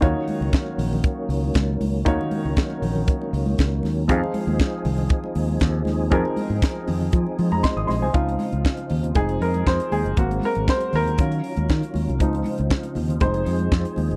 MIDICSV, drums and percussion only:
0, 0, Header, 1, 2, 480
1, 0, Start_track
1, 0, Tempo, 507614
1, 16, Time_signature, 4, 2, 24, 8
1, 13393, End_track
2, 0, Start_track
2, 0, Title_t, "Drums"
2, 20, Note_on_c, 9, 42, 62
2, 21, Note_on_c, 9, 36, 105
2, 27, Note_on_c, 9, 62, 33
2, 27, Note_on_c, 9, 64, 73
2, 115, Note_off_c, 9, 42, 0
2, 116, Note_off_c, 9, 36, 0
2, 121, Note_off_c, 9, 62, 0
2, 121, Note_off_c, 9, 64, 0
2, 261, Note_on_c, 9, 46, 53
2, 263, Note_on_c, 9, 63, 83
2, 356, Note_off_c, 9, 46, 0
2, 357, Note_off_c, 9, 63, 0
2, 400, Note_on_c, 9, 63, 75
2, 494, Note_off_c, 9, 63, 0
2, 500, Note_on_c, 9, 42, 63
2, 501, Note_on_c, 9, 36, 120
2, 510, Note_on_c, 9, 62, 43
2, 514, Note_on_c, 9, 38, 122
2, 594, Note_off_c, 9, 42, 0
2, 596, Note_off_c, 9, 36, 0
2, 605, Note_off_c, 9, 62, 0
2, 609, Note_off_c, 9, 38, 0
2, 627, Note_on_c, 9, 62, 40
2, 722, Note_off_c, 9, 62, 0
2, 744, Note_on_c, 9, 64, 86
2, 747, Note_on_c, 9, 46, 86
2, 839, Note_off_c, 9, 64, 0
2, 841, Note_off_c, 9, 46, 0
2, 878, Note_on_c, 9, 64, 93
2, 973, Note_off_c, 9, 64, 0
2, 979, Note_on_c, 9, 42, 67
2, 983, Note_on_c, 9, 36, 125
2, 998, Note_on_c, 9, 62, 41
2, 1074, Note_off_c, 9, 42, 0
2, 1078, Note_off_c, 9, 36, 0
2, 1092, Note_off_c, 9, 62, 0
2, 1229, Note_on_c, 9, 46, 66
2, 1234, Note_on_c, 9, 63, 54
2, 1323, Note_off_c, 9, 46, 0
2, 1329, Note_off_c, 9, 63, 0
2, 1362, Note_on_c, 9, 63, 76
2, 1456, Note_off_c, 9, 63, 0
2, 1457, Note_on_c, 9, 42, 64
2, 1468, Note_on_c, 9, 36, 118
2, 1474, Note_on_c, 9, 38, 112
2, 1552, Note_off_c, 9, 42, 0
2, 1562, Note_off_c, 9, 36, 0
2, 1568, Note_off_c, 9, 38, 0
2, 1709, Note_on_c, 9, 63, 83
2, 1712, Note_on_c, 9, 46, 62
2, 1804, Note_off_c, 9, 63, 0
2, 1807, Note_off_c, 9, 46, 0
2, 1947, Note_on_c, 9, 42, 67
2, 1949, Note_on_c, 9, 36, 125
2, 1955, Note_on_c, 9, 62, 35
2, 1955, Note_on_c, 9, 64, 76
2, 2041, Note_off_c, 9, 42, 0
2, 2044, Note_off_c, 9, 36, 0
2, 2050, Note_off_c, 9, 62, 0
2, 2050, Note_off_c, 9, 64, 0
2, 2088, Note_on_c, 9, 62, 40
2, 2182, Note_off_c, 9, 62, 0
2, 2187, Note_on_c, 9, 46, 53
2, 2187, Note_on_c, 9, 63, 91
2, 2281, Note_off_c, 9, 46, 0
2, 2281, Note_off_c, 9, 63, 0
2, 2322, Note_on_c, 9, 63, 82
2, 2417, Note_off_c, 9, 63, 0
2, 2426, Note_on_c, 9, 42, 66
2, 2430, Note_on_c, 9, 36, 116
2, 2441, Note_on_c, 9, 38, 125
2, 2520, Note_off_c, 9, 42, 0
2, 2524, Note_off_c, 9, 36, 0
2, 2535, Note_off_c, 9, 38, 0
2, 2554, Note_on_c, 9, 62, 41
2, 2648, Note_off_c, 9, 62, 0
2, 2670, Note_on_c, 9, 64, 89
2, 2674, Note_on_c, 9, 46, 75
2, 2765, Note_off_c, 9, 64, 0
2, 2769, Note_off_c, 9, 46, 0
2, 2798, Note_on_c, 9, 64, 88
2, 2893, Note_off_c, 9, 64, 0
2, 2908, Note_on_c, 9, 42, 67
2, 2911, Note_on_c, 9, 36, 119
2, 3002, Note_off_c, 9, 42, 0
2, 3005, Note_off_c, 9, 36, 0
2, 3041, Note_on_c, 9, 62, 37
2, 3136, Note_off_c, 9, 62, 0
2, 3153, Note_on_c, 9, 63, 52
2, 3158, Note_on_c, 9, 46, 61
2, 3247, Note_off_c, 9, 63, 0
2, 3253, Note_off_c, 9, 46, 0
2, 3274, Note_on_c, 9, 63, 81
2, 3369, Note_off_c, 9, 63, 0
2, 3385, Note_on_c, 9, 62, 35
2, 3389, Note_on_c, 9, 42, 66
2, 3394, Note_on_c, 9, 36, 107
2, 3406, Note_on_c, 9, 38, 116
2, 3479, Note_off_c, 9, 62, 0
2, 3484, Note_off_c, 9, 42, 0
2, 3488, Note_off_c, 9, 36, 0
2, 3500, Note_off_c, 9, 38, 0
2, 3518, Note_on_c, 9, 62, 37
2, 3613, Note_off_c, 9, 62, 0
2, 3622, Note_on_c, 9, 63, 80
2, 3641, Note_on_c, 9, 38, 40
2, 3642, Note_on_c, 9, 46, 60
2, 3717, Note_off_c, 9, 63, 0
2, 3735, Note_off_c, 9, 38, 0
2, 3736, Note_off_c, 9, 46, 0
2, 3869, Note_on_c, 9, 36, 110
2, 3870, Note_on_c, 9, 42, 70
2, 3872, Note_on_c, 9, 64, 78
2, 3964, Note_off_c, 9, 36, 0
2, 3965, Note_off_c, 9, 42, 0
2, 3966, Note_off_c, 9, 64, 0
2, 4006, Note_on_c, 9, 62, 38
2, 4100, Note_off_c, 9, 62, 0
2, 4103, Note_on_c, 9, 63, 86
2, 4105, Note_on_c, 9, 46, 59
2, 4197, Note_off_c, 9, 63, 0
2, 4199, Note_off_c, 9, 46, 0
2, 4235, Note_on_c, 9, 63, 78
2, 4330, Note_off_c, 9, 63, 0
2, 4343, Note_on_c, 9, 42, 66
2, 4346, Note_on_c, 9, 36, 115
2, 4358, Note_on_c, 9, 38, 115
2, 4437, Note_off_c, 9, 42, 0
2, 4441, Note_off_c, 9, 36, 0
2, 4452, Note_off_c, 9, 38, 0
2, 4585, Note_on_c, 9, 64, 91
2, 4586, Note_on_c, 9, 46, 84
2, 4679, Note_off_c, 9, 64, 0
2, 4680, Note_off_c, 9, 46, 0
2, 4711, Note_on_c, 9, 64, 84
2, 4805, Note_off_c, 9, 64, 0
2, 4817, Note_on_c, 9, 42, 73
2, 4824, Note_on_c, 9, 36, 127
2, 4834, Note_on_c, 9, 62, 46
2, 4911, Note_off_c, 9, 42, 0
2, 4918, Note_off_c, 9, 36, 0
2, 4929, Note_off_c, 9, 62, 0
2, 4952, Note_on_c, 9, 62, 37
2, 5047, Note_off_c, 9, 62, 0
2, 5062, Note_on_c, 9, 46, 66
2, 5062, Note_on_c, 9, 63, 59
2, 5156, Note_off_c, 9, 46, 0
2, 5156, Note_off_c, 9, 63, 0
2, 5187, Note_on_c, 9, 63, 69
2, 5282, Note_off_c, 9, 63, 0
2, 5294, Note_on_c, 9, 42, 61
2, 5301, Note_on_c, 9, 62, 34
2, 5306, Note_on_c, 9, 36, 107
2, 5311, Note_on_c, 9, 38, 103
2, 5389, Note_off_c, 9, 42, 0
2, 5395, Note_off_c, 9, 62, 0
2, 5400, Note_off_c, 9, 36, 0
2, 5406, Note_off_c, 9, 38, 0
2, 5531, Note_on_c, 9, 63, 78
2, 5550, Note_on_c, 9, 38, 42
2, 5551, Note_on_c, 9, 46, 57
2, 5626, Note_off_c, 9, 63, 0
2, 5645, Note_off_c, 9, 38, 0
2, 5646, Note_off_c, 9, 46, 0
2, 5780, Note_on_c, 9, 42, 58
2, 5784, Note_on_c, 9, 36, 112
2, 5785, Note_on_c, 9, 64, 77
2, 5875, Note_off_c, 9, 42, 0
2, 5878, Note_off_c, 9, 36, 0
2, 5879, Note_off_c, 9, 64, 0
2, 5912, Note_on_c, 9, 62, 43
2, 6006, Note_off_c, 9, 62, 0
2, 6019, Note_on_c, 9, 63, 83
2, 6024, Note_on_c, 9, 46, 58
2, 6113, Note_off_c, 9, 63, 0
2, 6118, Note_off_c, 9, 46, 0
2, 6149, Note_on_c, 9, 63, 82
2, 6243, Note_off_c, 9, 63, 0
2, 6260, Note_on_c, 9, 42, 66
2, 6262, Note_on_c, 9, 36, 120
2, 6266, Note_on_c, 9, 62, 39
2, 6274, Note_on_c, 9, 38, 117
2, 6354, Note_off_c, 9, 42, 0
2, 6357, Note_off_c, 9, 36, 0
2, 6361, Note_off_c, 9, 62, 0
2, 6369, Note_off_c, 9, 38, 0
2, 6385, Note_on_c, 9, 62, 35
2, 6479, Note_off_c, 9, 62, 0
2, 6501, Note_on_c, 9, 46, 77
2, 6502, Note_on_c, 9, 64, 90
2, 6596, Note_off_c, 9, 46, 0
2, 6597, Note_off_c, 9, 64, 0
2, 6628, Note_on_c, 9, 64, 82
2, 6723, Note_off_c, 9, 64, 0
2, 6736, Note_on_c, 9, 42, 69
2, 6742, Note_on_c, 9, 36, 118
2, 6744, Note_on_c, 9, 62, 41
2, 6831, Note_off_c, 9, 42, 0
2, 6837, Note_off_c, 9, 36, 0
2, 6839, Note_off_c, 9, 62, 0
2, 6871, Note_on_c, 9, 62, 32
2, 6965, Note_off_c, 9, 62, 0
2, 6984, Note_on_c, 9, 46, 60
2, 6984, Note_on_c, 9, 63, 52
2, 7078, Note_off_c, 9, 63, 0
2, 7079, Note_off_c, 9, 46, 0
2, 7108, Note_on_c, 9, 63, 79
2, 7202, Note_off_c, 9, 63, 0
2, 7217, Note_on_c, 9, 42, 63
2, 7224, Note_on_c, 9, 36, 109
2, 7234, Note_on_c, 9, 38, 94
2, 7312, Note_off_c, 9, 42, 0
2, 7318, Note_off_c, 9, 36, 0
2, 7329, Note_off_c, 9, 38, 0
2, 7351, Note_on_c, 9, 62, 35
2, 7445, Note_off_c, 9, 62, 0
2, 7455, Note_on_c, 9, 63, 74
2, 7470, Note_on_c, 9, 38, 43
2, 7471, Note_on_c, 9, 46, 57
2, 7549, Note_off_c, 9, 63, 0
2, 7565, Note_off_c, 9, 38, 0
2, 7566, Note_off_c, 9, 46, 0
2, 7697, Note_on_c, 9, 42, 65
2, 7700, Note_on_c, 9, 36, 116
2, 7792, Note_off_c, 9, 42, 0
2, 7795, Note_off_c, 9, 36, 0
2, 7834, Note_on_c, 9, 42, 44
2, 7929, Note_off_c, 9, 42, 0
2, 7932, Note_on_c, 9, 63, 81
2, 7939, Note_on_c, 9, 46, 56
2, 8027, Note_off_c, 9, 63, 0
2, 8033, Note_off_c, 9, 46, 0
2, 8061, Note_on_c, 9, 42, 44
2, 8066, Note_on_c, 9, 63, 72
2, 8155, Note_off_c, 9, 42, 0
2, 8161, Note_off_c, 9, 63, 0
2, 8177, Note_on_c, 9, 36, 102
2, 8187, Note_on_c, 9, 38, 115
2, 8271, Note_off_c, 9, 36, 0
2, 8282, Note_off_c, 9, 38, 0
2, 8294, Note_on_c, 9, 42, 48
2, 8305, Note_on_c, 9, 62, 41
2, 8389, Note_off_c, 9, 42, 0
2, 8399, Note_off_c, 9, 62, 0
2, 8412, Note_on_c, 9, 46, 83
2, 8422, Note_on_c, 9, 64, 82
2, 8507, Note_off_c, 9, 46, 0
2, 8517, Note_off_c, 9, 64, 0
2, 8542, Note_on_c, 9, 64, 79
2, 8548, Note_on_c, 9, 42, 55
2, 8637, Note_off_c, 9, 64, 0
2, 8642, Note_off_c, 9, 42, 0
2, 8650, Note_on_c, 9, 42, 64
2, 8656, Note_on_c, 9, 36, 116
2, 8744, Note_off_c, 9, 42, 0
2, 8751, Note_off_c, 9, 36, 0
2, 8783, Note_on_c, 9, 42, 50
2, 8877, Note_off_c, 9, 42, 0
2, 8903, Note_on_c, 9, 46, 61
2, 8997, Note_off_c, 9, 46, 0
2, 9022, Note_on_c, 9, 42, 45
2, 9024, Note_on_c, 9, 63, 74
2, 9117, Note_off_c, 9, 42, 0
2, 9118, Note_off_c, 9, 63, 0
2, 9140, Note_on_c, 9, 36, 104
2, 9145, Note_on_c, 9, 38, 90
2, 9234, Note_off_c, 9, 36, 0
2, 9239, Note_off_c, 9, 38, 0
2, 9265, Note_on_c, 9, 42, 54
2, 9266, Note_on_c, 9, 62, 28
2, 9360, Note_off_c, 9, 42, 0
2, 9361, Note_off_c, 9, 62, 0
2, 9377, Note_on_c, 9, 63, 75
2, 9382, Note_on_c, 9, 46, 61
2, 9471, Note_off_c, 9, 63, 0
2, 9477, Note_off_c, 9, 46, 0
2, 9513, Note_on_c, 9, 42, 42
2, 9608, Note_off_c, 9, 42, 0
2, 9614, Note_on_c, 9, 42, 65
2, 9619, Note_on_c, 9, 36, 113
2, 9628, Note_on_c, 9, 62, 35
2, 9709, Note_off_c, 9, 42, 0
2, 9713, Note_off_c, 9, 36, 0
2, 9722, Note_off_c, 9, 62, 0
2, 9749, Note_on_c, 9, 62, 38
2, 9752, Note_on_c, 9, 42, 42
2, 9843, Note_off_c, 9, 62, 0
2, 9847, Note_off_c, 9, 42, 0
2, 9853, Note_on_c, 9, 63, 82
2, 9863, Note_on_c, 9, 46, 57
2, 9948, Note_off_c, 9, 63, 0
2, 9957, Note_off_c, 9, 46, 0
2, 9978, Note_on_c, 9, 42, 47
2, 9988, Note_on_c, 9, 63, 69
2, 10072, Note_off_c, 9, 42, 0
2, 10083, Note_off_c, 9, 63, 0
2, 10098, Note_on_c, 9, 36, 112
2, 10099, Note_on_c, 9, 62, 36
2, 10108, Note_on_c, 9, 38, 125
2, 10192, Note_off_c, 9, 36, 0
2, 10194, Note_off_c, 9, 62, 0
2, 10203, Note_off_c, 9, 38, 0
2, 10217, Note_on_c, 9, 42, 54
2, 10223, Note_on_c, 9, 62, 36
2, 10311, Note_off_c, 9, 42, 0
2, 10317, Note_off_c, 9, 62, 0
2, 10333, Note_on_c, 9, 64, 93
2, 10340, Note_on_c, 9, 46, 77
2, 10428, Note_off_c, 9, 64, 0
2, 10434, Note_off_c, 9, 46, 0
2, 10458, Note_on_c, 9, 64, 81
2, 10471, Note_on_c, 9, 42, 51
2, 10553, Note_off_c, 9, 64, 0
2, 10565, Note_off_c, 9, 42, 0
2, 10570, Note_on_c, 9, 42, 68
2, 10577, Note_on_c, 9, 62, 39
2, 10578, Note_on_c, 9, 36, 124
2, 10664, Note_off_c, 9, 42, 0
2, 10672, Note_off_c, 9, 36, 0
2, 10672, Note_off_c, 9, 62, 0
2, 10698, Note_on_c, 9, 62, 30
2, 10701, Note_on_c, 9, 42, 50
2, 10793, Note_off_c, 9, 62, 0
2, 10796, Note_off_c, 9, 42, 0
2, 10815, Note_on_c, 9, 46, 63
2, 10910, Note_off_c, 9, 46, 0
2, 10936, Note_on_c, 9, 63, 78
2, 10941, Note_on_c, 9, 42, 43
2, 11030, Note_off_c, 9, 63, 0
2, 11036, Note_off_c, 9, 42, 0
2, 11052, Note_on_c, 9, 62, 35
2, 11059, Note_on_c, 9, 36, 107
2, 11067, Note_on_c, 9, 38, 89
2, 11146, Note_off_c, 9, 62, 0
2, 11154, Note_off_c, 9, 36, 0
2, 11162, Note_off_c, 9, 38, 0
2, 11181, Note_on_c, 9, 62, 31
2, 11189, Note_on_c, 9, 42, 50
2, 11275, Note_off_c, 9, 62, 0
2, 11283, Note_off_c, 9, 42, 0
2, 11289, Note_on_c, 9, 63, 71
2, 11304, Note_on_c, 9, 46, 61
2, 11384, Note_off_c, 9, 63, 0
2, 11399, Note_off_c, 9, 46, 0
2, 11436, Note_on_c, 9, 42, 43
2, 11530, Note_off_c, 9, 42, 0
2, 11535, Note_on_c, 9, 62, 35
2, 11538, Note_on_c, 9, 36, 97
2, 11539, Note_on_c, 9, 42, 66
2, 11629, Note_off_c, 9, 62, 0
2, 11633, Note_off_c, 9, 36, 0
2, 11634, Note_off_c, 9, 42, 0
2, 11660, Note_on_c, 9, 62, 36
2, 11674, Note_on_c, 9, 42, 47
2, 11755, Note_off_c, 9, 62, 0
2, 11766, Note_on_c, 9, 63, 83
2, 11769, Note_off_c, 9, 42, 0
2, 11777, Note_on_c, 9, 46, 58
2, 11860, Note_off_c, 9, 63, 0
2, 11872, Note_off_c, 9, 46, 0
2, 11893, Note_on_c, 9, 42, 44
2, 11899, Note_on_c, 9, 63, 70
2, 11988, Note_off_c, 9, 42, 0
2, 11994, Note_off_c, 9, 63, 0
2, 12013, Note_on_c, 9, 36, 102
2, 12021, Note_on_c, 9, 38, 122
2, 12108, Note_off_c, 9, 36, 0
2, 12115, Note_off_c, 9, 38, 0
2, 12135, Note_on_c, 9, 42, 57
2, 12135, Note_on_c, 9, 62, 38
2, 12229, Note_off_c, 9, 62, 0
2, 12230, Note_off_c, 9, 42, 0
2, 12246, Note_on_c, 9, 64, 80
2, 12254, Note_on_c, 9, 46, 81
2, 12341, Note_off_c, 9, 64, 0
2, 12348, Note_off_c, 9, 46, 0
2, 12371, Note_on_c, 9, 64, 84
2, 12387, Note_on_c, 9, 42, 56
2, 12466, Note_off_c, 9, 64, 0
2, 12482, Note_off_c, 9, 42, 0
2, 12486, Note_on_c, 9, 42, 71
2, 12491, Note_on_c, 9, 36, 117
2, 12491, Note_on_c, 9, 62, 39
2, 12580, Note_off_c, 9, 42, 0
2, 12586, Note_off_c, 9, 36, 0
2, 12586, Note_off_c, 9, 62, 0
2, 12614, Note_on_c, 9, 42, 55
2, 12619, Note_on_c, 9, 62, 31
2, 12709, Note_off_c, 9, 42, 0
2, 12713, Note_off_c, 9, 62, 0
2, 12730, Note_on_c, 9, 46, 68
2, 12825, Note_off_c, 9, 46, 0
2, 12848, Note_on_c, 9, 63, 64
2, 12852, Note_on_c, 9, 42, 44
2, 12943, Note_off_c, 9, 63, 0
2, 12946, Note_off_c, 9, 42, 0
2, 12971, Note_on_c, 9, 36, 109
2, 12975, Note_on_c, 9, 38, 99
2, 13066, Note_off_c, 9, 36, 0
2, 13069, Note_off_c, 9, 38, 0
2, 13099, Note_on_c, 9, 42, 49
2, 13193, Note_off_c, 9, 42, 0
2, 13204, Note_on_c, 9, 63, 73
2, 13214, Note_on_c, 9, 46, 57
2, 13298, Note_off_c, 9, 63, 0
2, 13309, Note_off_c, 9, 46, 0
2, 13345, Note_on_c, 9, 42, 42
2, 13393, Note_off_c, 9, 42, 0
2, 13393, End_track
0, 0, End_of_file